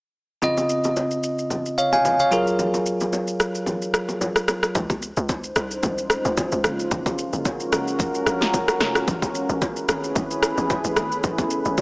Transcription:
0.42 tine electric piano C#3 C4 F4 D#5, low conga, shaker
0.57 low bongo, shaker
0.69 shaker
0.84 low bongo, shaker
0.96 high bongo, shaker
1.11 shaker
1.23 shaker
1.39 shaker
1.50 low bongo, low conga, shaker
1.66 shaker
1.78 tine electric piano C#5 F5, shaker
1.92 tine electric piano F5 G#5, low bongo, shaker
2.05 high bongo, low conga, shaker
2.20 tine electric piano C#5 F5, shaker
2.31 tine electric piano F#3 F4 G#4 A#4, high bongo, shaker
2.47 shaker
2.59 low conga, shaker
2.74 low bongo, shaker
2.86 shaker
3.00 low bongo, shaker
3.13 high bongo, shaker
3.27 shaker
3.40 cross-stick, shaker
3.55 shaker
3.66 low bongo, low conga, shaker
3.82 shaker
3.94 cross-stick, shaker
4.09 low bongo, shaker
4.21 high bongo, low conga, shaker
4.36 cross-stick, shaker
4.48 cross-stick, high bongo, shaker
4.63 cross-stick, shaker
4.75 log drum bass C#2, ambient pad G#3 C#4 D#4 F4 C5, kick, low conga, shaker
4.90 kick, low bongo, shaker
5.02 shaker
5.17 log drum bass C#2, shaker
5.29 kick, high bongo, shaker
5.44 shaker
5.56 log drum bass C2, cross-stick, shaker
5.71 shaker
5.83 log drum bass C2, kick, low conga, shaker
5.98 shaker
6.10 cross-stick, shaker
6.25 log drum bass C#2, low bongo, shaker
6.37 kick, high bongo, low conga, shaker
6.52 log drum bass C#2, shaker
6.64 log drum bass F#1, ambient pad F#4 A#4, cross-stick, shaker
6.80 shaker
6.91 log drum bass F#1, kick, low conga, shaker
7.06 kick, low bongo, shaker
7.18 shaker
7.33 log drum bass F#1, shaker
7.45 kick, high bongo, shaker
7.60 shaker
7.72 log drum bass F#1, cross-stick, shaker
7.88 shaker
7.99 kick, low conga, shaker
8.15 shaker
8.26 log drum bass A#1, cross-stick, shaker
8.41 snare, low bongo, shaker
8.54 kick, high bongo, low conga, shaker
8.68 cross-stick, shaker
8.80 log drum bass F1, cross-stick, snare, shaker
8.95 cross-stick, shaker
9.07 log drum bass A1, ambient pad A3 E4 G#4 B4, kick, low conga, shaker
9.22 kick, low bongo, shaker
9.35 shaker
9.49 log drum bass A1, shaker
9.62 kick, high bongo, shaker
9.76 shaker
9.89 log drum bass G#1, cross-stick, shaker
10.04 shaker
10.15 log drum bass G#1, kick, low conga, shaker
10.31 shaker
10.43 cross-stick, shaker
10.58 log drum bass A1, low bongo, shaker
10.70 kick, high bongo, low conga, shaker
10.84 log drum bass A1, shaker
10.96 log drum bass G#1, cross-stick, shaker
11.12 shaker
11.24 log drum bass A1, kick, low conga, shaker
11.38 kick, low bongo, shaker
11.51 shaker
11.65 log drum bass A1, shaker
11.77 kick, high bongo, shaker

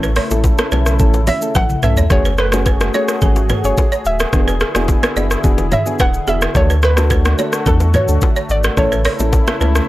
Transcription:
Already playing: sub bass A1, analog synth pad C#3 A3 E4, synth pluck E5
0.03 balafon B4, shaker
0.16 balafon C#5, cross-stick, open hi-hat, shaker
0.31 sub bass A1, synth keys A3 C#4 E4 A4, low bongo, shaker
0.44 kick, high bongo, shaker
0.58 balafon A4, cross-stick, low bongo, shaker
0.72 sub bass B1, synth keys A3 C#4 E4 A4, balafon B4, low bongo, shaker
0.86 cross-stick, shaker
0.99 sub bass A1, synth keys A3 C#4 E4 A4, kick, low conga, shaker
1.14 high bongo, shaker
1.27 balafon C#5, synth pluck E5, open hi-hat, low bongo, low conga, shaker
1.42 synth keys A3 C#4 E4 A4, shaker
1.55 sub bass A1, balafon A4, synth pluck F#5, kick, high tom, high bongo, shaker
1.70 mid tom, shaker
1.83 sub bass B1, synth keys A3 C#4 E4 A4, balafon B4, synth pluck E5, mid tom, shaker
1.97 balafon C#5, floor tom, shaker
2.10 sub bass F#1, analog synth pad A3 F#4 G#4, synth keys A3 C#4 F#4 G#4, synth pluck C#5, kick, cross-stick, low conga, shaker
2.25 balafon B4, shaker
2.38 balafon A4, synth pluck B4, cross-stick, shaker
2.52 synth keys A3 C#4 F#4 G#4, cross-stick, low bongo, shaker
2.66 balafon B4, kick, high bongo, shaker
2.81 cross-stick, low bongo, shaker
2.94 synth keys A3 C#4 F#4 G#4, balafon C#5, synth pluck C#5, low bongo, shaker
3.08 cross-stick, shaker
3.21 sub bass G#1, synth keys A3 C#4 F#4 G#4, balafon A4, kick, low conga, shaker
3.36 high bongo, shaker
3.49 balafon B4, mid tom, low bongo, low conga, shaker
3.64 sub bass F#1, synth keys A3 C#4 F#4 G#4, synth pluck C#5, shaker
3.77 kick, high bongo, shaker
3.92 balafon C#5, shaker
4.05 sub bass D1, synth pluck E5, shaker
4.20 balafon A4, cross-stick, shaker
4.33 sub bass E1, analog synth pad D3 E4, synth keys B3 D4 F#4 G#4, kick, cross-stick, low conga, shaker
4.48 balafon B4, shaker
4.60 balafon G#4, cross-stick, shaker
4.75 sub bass E1, synth keys B3 D4 F#4 G#4, cross-stick, low bongo, shaker
4.88 kick, high bongo, shaker
5.03 balafon B4, cross-stick, low bongo, shaker
5.16 sub bass F#1, synth keys B3 D4 F#4 G#4, balafon D5, low bongo, shaker
5.31 cross-stick, shaker
5.44 sub bass E1, synth keys B3 D4 F#4 G#4, kick, low conga, shaker
5.58 high bongo, shaker
5.72 balafon C#5, synth pluck E5, mid tom, low bongo, low conga, shaker
5.86 synth keys B3 D4 F#4 G#4, shaker
5.99 sub bass D1, balafon B4, synth pluck F#5, kick, high bongo, shaker
6.14 shaker
6.27 sub bass E1, synth keys B3 D4 F#4 G#4, balafon G#4, synth pluck E5, shaker
6.42 balafon B4, cross-stick, shaker
6.55 sub bass D2, synth keys A3 D4 F#4 A4, analog synth pad A3 F#4, synth pluck C#5, kick, cross-stick, low conga, shaker
6.70 balafon B4, shaker
6.82 balafon A4, synth pluck B4, cross-stick, shaker
6.97 synth keys A3 D4 F#4 A4, cross-stick, low bongo, shaker
7.10 balafon B4, kick, high bongo, shaker
7.25 cross-stick, low bongo, shaker
7.38 synth keys A3 D4 F#4 A4, balafon C#5, low bongo, shaker
7.53 cross-stick, shaker
7.66 sub bass E2, synth keys A3 D4 F#4 A4, balafon A4, synth pluck A4, kick, low conga, shaker
7.80 high bongo, shaker
7.94 balafon B4, synth pluck C#5, mid tom, low bongo, low conga, shaker
8.08 sub bass D2, synth keys A3 D4 F#4 A4, shaker
8.21 kick, high bongo, shaker
8.36 balafon C#5, shaker
8.49 sub bass G#1, synth pluck D5, shaker
8.64 balafon A4, cross-stick, shaker
8.77 sub bass A1, analog synth pad C#3 E4, synth keys A3 C#4 E4 A4, synth pluck C#5, kick, cross-stick, low conga, shaker
8.92 balafon B4, shaker
9.05 balafon C#5, cross-stick, open hi-hat, shaker
9.19 sub bass A1, synth keys A3 C#4 E4 A4, low bongo, shaker
9.33 kick, high bongo, shaker
9.47 balafon A4, cross-stick, low bongo, shaker
9.60 sub bass C#2, synth keys A3 C#4 E4 A4, balafon B4, low bongo, shaker
9.75 cross-stick, shaker

